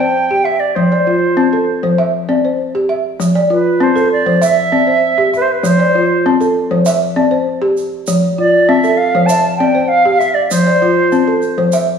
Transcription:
0.00 0.15 C4 medium
0.00 0.46 C5 medium
0.00 0.31 D5 medium
0.00 0.46 G5 medium
0.31 0.61 G4 medium
0.45 0.61 E5 medium
0.45 0.91 E5 medium
0.60 0.77 D5 medium
0.75 1.07 F3 medium
0.75 1.98 C5 medium
0.92 1.37 D5 medium
1.07 1.53 F4 medium
1.37 1.68 C4 medium
1.53 1.98 A4 medium
1.83 1.98 F3 medium
1.83 2.14 C5 medium
1.98 2.44 E5 medium
2.29 2.59 C4 medium
2.29 2.75 D5 medium
2.45 2.90 C5 soft
2.75 3.05 G4 medium
2.89 3.35 E5 medium
3.20 3.51 F3 medium
3.20 shaker medium
3.35 3.81 D5 medium
3.50 3.96 F4 medium
3.50 3.84 B4 medium
3.80 4.11 C4 medium
3.80 4.11 C5 medium
3.96 4.42 A4 medium
3.96 shaker soft
4.12 4.40 D5 medium
4.26 4.42 F3 medium
4.26 4.57 C5 medium
4.42 4.88 E5 medium
4.42 5.30 E5 loud
4.42 shaker medium
4.72 5.03 C4 medium
4.72 5.18 D5 medium
4.87 5.33 C5 medium
5.18 5.49 G4 medium
5.34 5.43 B4 medium
5.34 5.79 E5 medium
5.34 shaker soft
5.42 5.53 C5 medium
5.52 5.68 B4 medium
5.63 5.94 F3 medium
5.63 6.26 C5 medium
5.63 shaker medium
5.79 6.25 D5 medium
5.95 6.41 F4 medium
6.26 6.56 C4 medium
6.41 6.86 A4 medium
6.41 shaker soft
6.71 6.86 F3 medium
6.71 7.01 C5 medium
6.86 7.32 E5 medium
6.86 shaker medium
7.16 7.47 C4 medium
7.16 7.62 D5 medium
7.31 7.77 C5 medium
7.62 7.92 G4 medium
7.77 shaker soft
8.07 8.38 F3 medium
8.07 shaker medium
8.38 8.84 F4 soft
8.38 8.70 D5 medium
8.69 8.99 C4 medium
8.69 8.99 E5 medium
8.84 9.29 A4 medium
8.84 shaker soft
8.97 9.28 F5 medium
9.15 9.30 F3 medium
9.15 9.45 C5 medium
9.26 9.75 E5 medium
9.26 9.57 A5 medium
9.26 shaker medium
9.57 9.91 C4 medium
9.57 10.06 D5 medium
9.57 9.90 G5 medium
9.75 10.21 C5 soft
9.88 10.20 F5 medium
10.05 10.36 G4 medium
10.19 10.36 E5 loud
10.19 10.67 E5 medium
10.19 shaker soft
10.34 10.50 D5 medium
10.51 10.82 F3 medium
10.51 11.69 C5 medium
10.51 shaker medium
10.66 11.12 D5 medium
10.82 11.28 F4 medium
11.12 11.43 C4 medium
11.12 shaker soft
11.28 11.73 A4 medium
11.42 shaker soft
11.58 11.73 F3 medium
11.58 11.89 C5 medium
11.72 11.99 E5 medium
11.72 shaker medium

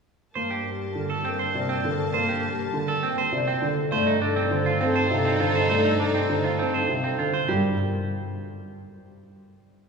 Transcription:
0.35 3.76 G2 medium
0.35 3.73 A#3 medium
0.35 0.55 A#3 medium
0.35 0.57 A#4 soft
0.35 0.55 A#4 medium
0.35 0.55 C5 medium
0.35 3.73 A5 medium
0.51 0.70 G4 medium
0.65 0.85 G4 medium
0.65 0.88 A#4 soft
0.95 1.14 D3 medium
0.95 1.19 A#4 medium
1.10 1.29 A4 medium
1.25 1.44 C4 medium
1.25 1.50 A#4 medium
1.25 1.44 G5 medium
1.39 1.59 C5 medium
1.54 1.74 C3 medium
1.54 1.74 D5 medium
1.60 1.81 A#4 medium
1.69 1.88 C4 medium
1.84 2.03 D3 medium
1.84 2.03 A4 medium
1.91 2.13 A#4 medium
2.13 2.33 A#3 medium
2.13 2.33 A#4 medium
2.13 2.33 C5 medium
2.22 2.44 A#4 medium
2.29 2.48 G4 medium
2.44 2.63 G4 medium
2.53 2.75 A#4 medium
2.73 2.93 D3 medium
2.85 3.07 A4 medium
2.85 3.06 A#4 medium
3.03 3.22 C4 medium
3.03 3.22 G5 medium
3.16 3.37 A#4 medium
3.16 3.37 C5 medium
3.32 3.52 C3 medium
3.32 3.52 D5 medium
3.47 3.67 C4 loud
3.47 3.68 A#4 soft
3.62 3.81 D3 medium
3.62 3.82 A4 medium
3.91 7.32 G2 medium
3.91 4.11 A3 loud
3.91 7.30 D#4 medium
3.91 4.14 A4 soft
3.91 7.30 A4 medium
3.91 4.11 C5 medium
3.91 4.11 D5 loud
4.07 4.21 D#4 medium
4.21 4.36 D4 medium
4.21 4.41 A4 medium
4.21 4.45 A4 medium
4.36 4.56 C4 loud
4.51 4.71 D3 medium
4.51 4.76 A4 medium
4.51 4.71 C5 medium
4.66 4.85 F4 medium
4.81 5.00 C4 medium
4.81 5.00 A5 medium
4.85 5.07 A4 medium
4.96 5.15 C5 medium
5.11 5.30 C3 medium
5.11 5.30 F5 medium
5.16 5.38 A4 medium
5.25 5.45 C4 medium
5.40 5.60 D3 medium
5.40 5.60 F4 medium
5.40 5.60 C5 medium
5.47 5.69 A4 medium
5.55 5.69 C5 medium
5.70 5.89 A3 medium
5.70 5.89 C5 medium
5.70 5.89 D5 medium
5.78 6.00 A4 medium
5.85 5.99 D#4 medium
6.00 6.14 D4 medium
6.00 6.19 A4 medium
6.09 6.31 A4 medium
6.14 6.34 C4 medium
6.29 6.49 D3 medium
6.29 6.49 C5 medium
6.40 6.62 A4 medium
6.44 6.64 F4 medium
6.59 6.79 C4 medium
6.59 6.78 A5 medium
6.71 6.93 A4 soft
6.71 6.93 C5 medium
6.88 7.08 C3 medium
6.88 7.08 F5 medium
7.02 7.23 C4 medium
7.02 7.24 A4 soft
7.19 7.38 D3 medium
7.19 7.38 F4 medium
7.19 7.38 C5 medium
7.34 7.53 C5 medium
7.48 7.76 G2 medium
7.48 7.76 G3 medium
7.48 7.76 G4 medium
7.48 7.76 A#4 medium

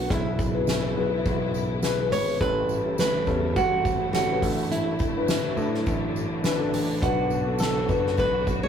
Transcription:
0.00 0.09 B3 medium
0.00 0.12 C#4 medium
0.00 0.12 D4 medium
0.00 0.12 F#4 medium
0.00 0.10 B4 medium
0.00 0.12 C#5 medium
0.09 0.93 B1 loud
0.09 0.92 B2 medium
0.09 2.38 B2 medium
0.09 2.39 E3 medium
0.09 2.38 G#3 medium
0.09 0.43 B3 medium
0.09 0.43 E4 medium
0.09 2.38 E4 medium
0.09 0.65 E4 medium
0.09 0.43 G#4 medium
0.09 0.43 B4 medium
0.09 kick loud
0.09 hi-hat pedal medium
0.09 ride medium
0.26 ride soft
0.39 kick loud
0.39 ride medium
0.39 tambourine medium
0.54 0.87 B3 medium
0.54 0.87 E4 medium
0.54 0.87 G#4 medium
0.54 0.87 B4 medium
0.54 ride soft
0.67 1.80 E4 medium
0.67 snare loud
0.67 ride medium
0.67 tambourine medium
0.85 ride soft
0.96 1.24 B1 medium
0.96 1.63 B3 medium
0.96 1.63 E4 medium
0.96 1.63 G#4 medium
0.96 1.63 B4 medium
0.96 ride medium
1.13 ride soft
1.25 2.08 B1 medium
1.25 kick loud
1.25 ride medium
1.25 tambourine medium
1.54 ride medium
1.54 tambourine medium
1.71 ride soft
1.82 1.95 B3 medium
1.82 1.95 E4 medium
1.82 1.95 G#4 medium
1.82 1.96 B4 loud
1.82 snare medium
1.82 ride medium
1.82 tambourine medium
1.99 2.31 B3 medium
1.99 2.32 E4 medium
1.99 2.32 G#4 medium
1.99 2.32 B4 medium
2.11 2.38 G#1 loud
2.11 2.40 C#5 loud
2.11 open hi-hat medium
2.11 ride medium
2.11 tambourine soft
2.28 ride soft
2.40 3.23 A1 loud
2.40 3.24 A2 medium
2.40 4.41 C#3 medium
2.40 4.41 G3 medium
2.40 6.98 A3 medium
2.40 2.74 C#4 medium
2.40 2.74 E4 medium
2.40 6.98 E4 medium
2.40 2.74 G4 medium
2.40 2.74 A4 medium
2.40 2.98 B4 loud
2.40 kick loud
2.40 hi-hat pedal medium
2.57 ride soft
2.69 ride medium
2.69 tambourine medium
2.85 3.18 C#4 medium
2.85 3.18 E4 medium
2.85 3.18 G4 medium
2.85 3.18 A4 medium
2.85 ride soft
2.98 3.58 B4 medium
2.98 snare loud
2.98 ride medium
2.98 tambourine medium
3.15 ride soft
3.26 3.54 E2 medium
3.26 3.94 G3 medium
3.26 3.93 C#4 medium
3.26 3.94 E4 medium
3.26 3.94 A4 medium
3.26 kick medium
3.26 ride medium
3.26 tambourine soft
3.44 ride soft
3.56 4.39 A1 loud
3.56 4.10 F#4 loud
3.56 kick loud
3.56 ride medium
3.56 tambourine soft
3.73 ride soft
3.85 kick loud
3.85 ride medium
3.85 tambourine medium
4.01 ride soft
4.13 4.26 C#4 medium
4.13 4.26 E4 medium
4.13 4.71 F#4 medium
4.13 4.26 G4 medium
4.13 4.26 A4 medium
4.13 snare medium
4.13 ride medium
4.13 tambourine medium
4.30 4.43 C#4 medium
4.30 4.42 E4 medium
4.30 4.43 G4 medium
4.30 4.43 B4 medium
4.42 4.96 A1 loud
4.42 5.25 A2 medium
4.42 8.68 D3 medium
4.42 7.00 F#3 medium
4.42 5.00 D4 medium
4.42 5.01 E4 medium
4.42 5.01 F#4 medium
4.42 5.01 A4 medium
4.42 kick medium
4.42 open hi-hat medium
4.42 ride medium
4.42 tambourine soft
4.59 ride soft
4.71 5.25 E4 medium
4.71 hi-hat pedal medium
4.71 ride medium
4.88 ride soft
4.99 kick loud
4.99 ride medium
4.99 tambourine medium
5.16 5.49 D4 medium
5.16 5.49 E4 medium
5.16 5.49 F#4 medium
5.16 5.49 B4 medium
5.16 ride soft
5.28 6.41 E4 medium
5.28 snare loud
5.28 ride medium
5.28 tambourine medium
5.57 5.84 A2 medium
5.57 6.24 D4 medium
5.57 6.24 E4 medium
5.57 6.24 F#4 medium
5.57 6.24 A4 medium
5.57 ride soft
5.57 tambourine soft
5.74 snare soft
5.74 ride soft
5.86 6.69 A1 loud
5.86 kick loud
5.86 ride medium
5.86 tambourine soft
6.03 ride soft
6.16 ride medium
6.16 tambourine medium
6.32 ride soft
6.43 6.56 D4 medium
6.43 6.56 E4 medium
6.43 6.56 F#4 medium
6.43 6.56 B4 medium
6.43 snare loud
6.43 ride medium
6.43 tambourine medium
6.59 6.92 D4 medium
6.59 6.92 E4 medium
6.59 6.92 F#4 medium
6.59 6.92 A4 medium
6.59 ride soft
6.73 7.00 A1 medium
6.73 open hi-hat medium
6.73 ride medium
6.73 tambourine soft
6.90 ride soft
7.02 7.85 B1 loud
7.02 7.85 B2 medium
7.02 8.68 F#3 medium
7.02 7.35 B3 medium
7.02 8.68 B3 medium
7.02 7.36 D4 medium
7.02 7.36 F#4 medium
7.02 7.62 F#4 medium
7.02 8.68 F#4 medium
7.02 7.36 B4 medium
7.02 kick loud
7.02 hi-hat pedal medium
7.02 ride medium
7.30 ride medium
7.30 tambourine medium
7.47 7.79 B3 medium
7.47 7.79 D4 medium
7.47 7.80 F#4 medium
7.47 7.80 A4 medium
7.47 ride soft
7.59 8.19 A4 medium
7.59 snare loud
7.59 ride medium
7.59 tambourine medium
7.77 ride soft
7.88 8.16 F#1 medium
7.88 8.55 B3 medium
7.88 8.55 D4 medium
7.88 8.55 F#4 medium
7.88 8.55 B4 medium
7.88 kick medium
7.88 ride medium
7.88 tambourine soft
8.06 snare soft
8.06 ride soft
8.17 8.68 B1 medium
8.17 8.60 B4 loud
8.17 kick medium
8.17 ride medium
8.17 tambourine soft
8.36 ride soft
8.47 kick medium
8.47 ride medium
8.47 tambourine medium
8.63 8.68 C#5 loud
8.63 ride soft

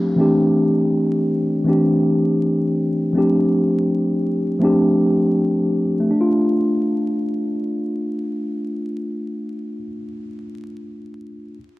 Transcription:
0.00 0.20 F3 medium
0.00 0.17 A3 medium
0.00 0.18 C4 medium
0.00 0.20 D4 medium
0.00 0.19 G4 medium
0.16 1.25 E3 medium
0.16 1.25 A3 medium
0.16 1.26 C4 medium
0.16 1.26 D4 medium
0.21 1.27 G4 medium
1.64 2.73 E3 medium
1.64 2.73 A3 medium
1.64 2.74 C4 medium
1.68 2.75 D4 medium
1.68 2.75 G4 medium
3.13 4.21 F3 medium
3.13 4.22 A3 medium
3.13 4.23 C4 medium
3.17 4.23 D4 medium
3.17 4.24 G4 medium
4.59 5.68 F3 medium
4.59 5.69 A3 medium
4.59 5.70 C4 medium
4.59 5.70 D4 medium
4.65 5.71 G4 medium
6.00 9.77 A3 medium
6.11 9.88 D4 medium
6.21 9.98 F4 medium

